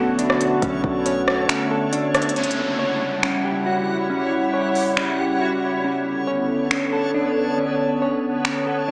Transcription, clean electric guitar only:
0, 0, Header, 1, 2, 480
1, 0, Start_track
1, 0, Tempo, 434783
1, 688, Time_signature, 4, 2, 24, 8
1, 9837, End_track
2, 0, Start_track
2, 0, Title_t, "Clean electric guitar"
2, 0, Program_c, 0, 27
2, 0, Note_on_c, 0, 61, 76
2, 0, Note_on_c, 0, 69, 77
2, 0, Note_on_c, 0, 73, 82
2, 208, Note_on_c, 0, 62, 92
2, 674, Note_off_c, 0, 61, 0
2, 687, Note_off_c, 0, 73, 0
2, 687, Note_on_c, 0, 61, 90
2, 1174, Note_on_c, 0, 73, 85
2, 1408, Note_off_c, 0, 69, 0
2, 1633, Note_off_c, 0, 61, 0
2, 1647, Note_on_c, 0, 61, 82
2, 1648, Note_off_c, 0, 62, 0
2, 1887, Note_on_c, 0, 69, 72
2, 2127, Note_on_c, 0, 62, 91
2, 2597, Note_off_c, 0, 61, 0
2, 2606, Note_off_c, 0, 62, 0
2, 2608, Note_off_c, 0, 69, 0
2, 2611, Note_off_c, 0, 73, 0
2, 2611, Note_on_c, 0, 61, 84
2, 3082, Note_on_c, 0, 73, 75
2, 3552, Note_off_c, 0, 61, 0
2, 3565, Note_on_c, 0, 61, 67
2, 3804, Note_on_c, 0, 67, 71
2, 4042, Note_on_c, 0, 66, 86
2, 4510, Note_off_c, 0, 61, 0
2, 4524, Note_on_c, 0, 61, 87
2, 4525, Note_off_c, 0, 73, 0
2, 5007, Note_on_c, 0, 73, 81
2, 5246, Note_off_c, 0, 67, 0
2, 5473, Note_off_c, 0, 61, 0
2, 5485, Note_off_c, 0, 66, 0
2, 5486, Note_on_c, 0, 61, 70
2, 5730, Note_on_c, 0, 67, 67
2, 5975, Note_on_c, 0, 66, 89
2, 6437, Note_off_c, 0, 61, 0
2, 6448, Note_off_c, 0, 73, 0
2, 6449, Note_off_c, 0, 67, 0
2, 6451, Note_on_c, 0, 61, 90
2, 6452, Note_off_c, 0, 66, 0
2, 6926, Note_on_c, 0, 73, 76
2, 7394, Note_off_c, 0, 61, 0
2, 7407, Note_on_c, 0, 61, 72
2, 7647, Note_on_c, 0, 69, 74
2, 7888, Note_on_c, 0, 62, 84
2, 8353, Note_off_c, 0, 61, 0
2, 8366, Note_on_c, 0, 61, 82
2, 8367, Note_off_c, 0, 73, 0
2, 8853, Note_on_c, 0, 73, 76
2, 9087, Note_off_c, 0, 69, 0
2, 9314, Note_off_c, 0, 61, 0
2, 9327, Note_on_c, 0, 61, 74
2, 9328, Note_off_c, 0, 62, 0
2, 9567, Note_on_c, 0, 69, 67
2, 9837, Note_off_c, 0, 61, 0
2, 9837, Note_off_c, 0, 69, 0
2, 9837, Note_off_c, 0, 73, 0
2, 9837, End_track
0, 0, End_of_file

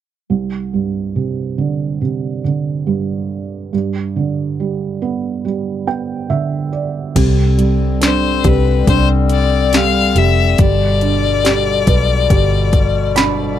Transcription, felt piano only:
0, 0, Header, 1, 2, 480
1, 0, Start_track
1, 0, Tempo, 857143
1, 169, Time_signature, 4, 2, 24, 8
1, 7612, End_track
2, 0, Start_track
2, 0, Title_t, "Felt piano"
2, 0, Program_c, 0, 0
2, 167, Note_on_c, 0, 36, 38
2, 268, Control_c, 0, 64, 127
2, 411, Note_on_c, 0, 43, 31
2, 648, Note_on_c, 0, 48, 34
2, 885, Note_on_c, 0, 50, 42
2, 1119, Note_off_c, 0, 48, 0
2, 1128, Note_on_c, 0, 48, 35
2, 1348, Note_off_c, 0, 43, 0
2, 1359, Note_off_c, 0, 50, 0
2, 1368, Note_on_c, 0, 50, 41
2, 1605, Note_on_c, 0, 43, 42
2, 2065, Note_off_c, 0, 36, 0
2, 2066, Note_off_c, 0, 48, 0
2, 2067, Note_off_c, 0, 50, 0
2, 2072, Note_off_c, 0, 43, 0
2, 2089, Note_on_c, 0, 43, 48
2, 2095, Control_c, 0, 64, 0
2, 2190, Control_c, 0, 64, 127
2, 2331, Note_on_c, 0, 50, 35
2, 2574, Note_on_c, 0, 55, 39
2, 2810, Note_on_c, 0, 59, 40
2, 3042, Note_off_c, 0, 55, 0
2, 3051, Note_on_c, 0, 55, 38
2, 3267, Note_off_c, 0, 50, 0
2, 3279, Note_off_c, 0, 59, 0
2, 3288, Note_on_c, 0, 59, 43
2, 3289, Note_on_c, 0, 79, 50
2, 3512, Note_off_c, 0, 79, 0
2, 3526, Note_on_c, 0, 50, 43
2, 3527, Note_on_c, 0, 76, 55
2, 3751, Note_off_c, 0, 76, 0
2, 3766, Note_on_c, 0, 74, 48
2, 3986, Note_off_c, 0, 43, 0
2, 3986, Note_off_c, 0, 59, 0
2, 3987, Note_off_c, 0, 55, 0
2, 3990, Note_off_c, 0, 74, 0
2, 3993, Note_off_c, 0, 50, 0
2, 4005, Note_on_c, 0, 48, 62
2, 4016, Control_c, 0, 64, 0
2, 4123, Control_c, 0, 64, 127
2, 4244, Note_on_c, 0, 55, 47
2, 4485, Note_on_c, 0, 62, 58
2, 4728, Note_on_c, 0, 67, 48
2, 4960, Note_off_c, 0, 62, 0
2, 4968, Note_on_c, 0, 62, 58
2, 5184, Note_off_c, 0, 55, 0
2, 5451, Note_on_c, 0, 55, 51
2, 5666, Note_off_c, 0, 67, 0
2, 5690, Note_on_c, 0, 67, 50
2, 5905, Note_off_c, 0, 48, 0
2, 5906, Note_off_c, 0, 62, 0
2, 5916, Note_off_c, 0, 55, 0
2, 5922, Note_off_c, 0, 67, 0
2, 5932, Note_on_c, 0, 55, 54
2, 5936, Control_c, 0, 64, 0
2, 6042, Control_c, 0, 64, 127
2, 6171, Note_on_c, 0, 62, 50
2, 6407, Note_on_c, 0, 67, 52
2, 6650, Note_on_c, 0, 71, 55
2, 6880, Note_off_c, 0, 67, 0
2, 6889, Note_on_c, 0, 67, 48
2, 7107, Note_off_c, 0, 62, 0
2, 7368, Note_on_c, 0, 62, 54
2, 7368, Note_on_c, 0, 83, 71
2, 7587, Note_off_c, 0, 71, 0
2, 7612, Note_off_c, 0, 55, 0
2, 7612, Note_off_c, 0, 62, 0
2, 7612, Note_off_c, 0, 67, 0
2, 7612, Note_off_c, 0, 83, 0
2, 7612, End_track
0, 0, End_of_file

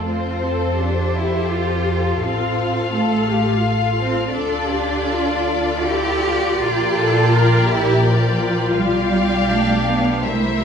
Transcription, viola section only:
0, 0, Header, 1, 2, 480
1, 0, Start_track
1, 0, Tempo, 727273
1, 34, Time_signature, 3, 2, 24, 8
1, 1473, Tempo, 704225
1, 3393, Tempo, 796813
1, 3873, Tempo, 728155
1, 5793, Tempo, 750939
1, 6997, End_track
2, 0, Start_track
2, 0, Title_t, "Viola section"
2, 0, Program_c, 0, 48
2, 31, Note_on_c, 0, 65, 36
2, 275, Note_off_c, 0, 65, 0
2, 284, Note_on_c, 0, 69, 42
2, 518, Note_on_c, 0, 67, 46
2, 525, Note_off_c, 0, 69, 0
2, 1470, Note_off_c, 0, 67, 0
2, 1483, Note_on_c, 0, 65, 47
2, 1934, Note_off_c, 0, 65, 0
2, 1947, Note_on_c, 0, 69, 50
2, 2179, Note_on_c, 0, 67, 45
2, 2180, Note_off_c, 0, 69, 0
2, 2412, Note_on_c, 0, 65, 46
2, 2420, Note_off_c, 0, 67, 0
2, 2902, Note_off_c, 0, 65, 0
2, 2904, Note_on_c, 0, 69, 49
2, 3141, Note_off_c, 0, 69, 0
2, 3143, Note_on_c, 0, 67, 52
2, 3392, Note_off_c, 0, 67, 0
2, 3401, Note_on_c, 0, 65, 54
2, 3878, Note_off_c, 0, 65, 0
2, 3882, Note_on_c, 0, 64, 47
2, 4126, Note_off_c, 0, 64, 0
2, 4134, Note_on_c, 0, 65, 52
2, 4369, Note_off_c, 0, 65, 0
2, 4369, Note_on_c, 0, 67, 53
2, 4602, Note_off_c, 0, 67, 0
2, 4608, Note_on_c, 0, 69, 57
2, 4845, Note_off_c, 0, 69, 0
2, 4849, Note_on_c, 0, 70, 61
2, 5084, Note_off_c, 0, 70, 0
2, 5091, Note_on_c, 0, 67, 59
2, 5323, Note_off_c, 0, 67, 0
2, 5328, Note_on_c, 0, 65, 60
2, 6261, Note_on_c, 0, 62, 52
2, 6272, Note_off_c, 0, 65, 0
2, 6738, Note_off_c, 0, 62, 0
2, 6746, Note_on_c, 0, 64, 41
2, 6990, Note_off_c, 0, 64, 0
2, 6997, End_track
0, 0, End_of_file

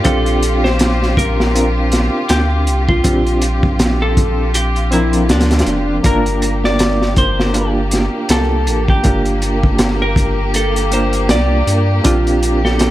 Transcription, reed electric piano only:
0, 0, Header, 1, 2, 480
1, 0, Start_track
1, 0, Key_signature, -2, "minor"
1, 0, Tempo, 750000
1, 28, Time_signature, 4, 2, 24, 8
1, 8260, End_track
2, 0, Start_track
2, 0, Title_t, "Reed electric piano"
2, 0, Program_c, 0, 4
2, 0, Control_c, 0, 64, 127
2, 26, Note_on_c, 0, 60, 105
2, 30, Note_on_c, 0, 62, 92
2, 36, Note_on_c, 0, 65, 94
2, 37, Control_c, 0, 64, 0
2, 41, Note_on_c, 0, 67, 108
2, 149, Control_c, 0, 64, 127
2, 962, Note_off_c, 0, 60, 0
2, 964, Note_off_c, 0, 62, 0
2, 967, Note_off_c, 0, 65, 0
2, 970, Note_off_c, 0, 67, 0
2, 983, Note_on_c, 0, 60, 78
2, 987, Note_on_c, 0, 62, 69
2, 995, Note_on_c, 0, 65, 71
2, 1000, Note_on_c, 0, 70, 82
2, 1921, Note_off_c, 0, 60, 0
2, 1923, Note_off_c, 0, 62, 0
2, 1927, Note_off_c, 0, 65, 0
2, 1929, Note_off_c, 0, 70, 0
2, 1944, Note_on_c, 0, 60, 88
2, 1949, Note_on_c, 0, 62, 73
2, 1956, Note_on_c, 0, 65, 75
2, 1958, Note_on_c, 0, 67, 91
2, 3121, Note_off_c, 0, 60, 0
2, 3124, Note_off_c, 0, 62, 0
2, 3127, Note_off_c, 0, 65, 0
2, 3128, Note_off_c, 0, 67, 0
2, 3141, Note_on_c, 0, 60, 88
2, 3149, Note_on_c, 0, 62, 75
2, 3153, Note_on_c, 0, 53, 76
2, 3159, Note_on_c, 0, 70, 90
2, 3840, Note_off_c, 0, 60, 0
2, 3844, Note_off_c, 0, 62, 0
2, 3846, Note_off_c, 0, 53, 0
2, 3849, Note_off_c, 0, 70, 0
2, 3861, Note_on_c, 0, 58, 98
2, 3866, Note_on_c, 0, 62, 93
2, 3871, Note_on_c, 0, 65, 94
2, 3877, Control_c, 0, 64, 0
2, 3878, Note_on_c, 0, 70, 104
2, 3987, Control_c, 0, 64, 127
2, 4800, Note_off_c, 0, 58, 0
2, 4802, Note_off_c, 0, 62, 0
2, 4805, Note_off_c, 0, 65, 0
2, 4808, Note_off_c, 0, 70, 0
2, 4822, Note_on_c, 0, 58, 77
2, 4827, Note_on_c, 0, 62, 72
2, 4834, Note_on_c, 0, 65, 73
2, 4837, Note_on_c, 0, 67, 85
2, 5760, Note_off_c, 0, 58, 0
2, 5763, Note_off_c, 0, 62, 0
2, 5766, Note_off_c, 0, 65, 0
2, 5768, Note_off_c, 0, 67, 0
2, 5783, Note_on_c, 0, 58, 82
2, 5791, Note_on_c, 0, 62, 76
2, 5796, Note_on_c, 0, 65, 78
2, 5802, Note_on_c, 0, 67, 97
2, 6961, Note_off_c, 0, 58, 0
2, 6965, Note_off_c, 0, 62, 0
2, 6967, Note_off_c, 0, 65, 0
2, 6970, Note_off_c, 0, 67, 0
2, 6983, Note_on_c, 0, 58, 86
2, 6988, Note_on_c, 0, 62, 81
2, 6996, Note_on_c, 0, 65, 75
2, 7001, Note_on_c, 0, 70, 95
2, 7681, Note_off_c, 0, 58, 0
2, 7683, Note_off_c, 0, 62, 0
2, 7687, Note_off_c, 0, 65, 0
2, 7690, Note_off_c, 0, 70, 0
2, 7704, Note_on_c, 0, 60, 100
2, 7709, Note_on_c, 0, 62, 96
2, 7715, Note_on_c, 0, 65, 98
2, 7716, Control_c, 0, 64, 0
2, 7719, Note_on_c, 0, 67, 106
2, 7823, Control_c, 0, 64, 127
2, 8260, Note_off_c, 0, 60, 0
2, 8260, Note_off_c, 0, 62, 0
2, 8260, Note_off_c, 0, 65, 0
2, 8260, Note_off_c, 0, 67, 0
2, 8260, End_track
0, 0, End_of_file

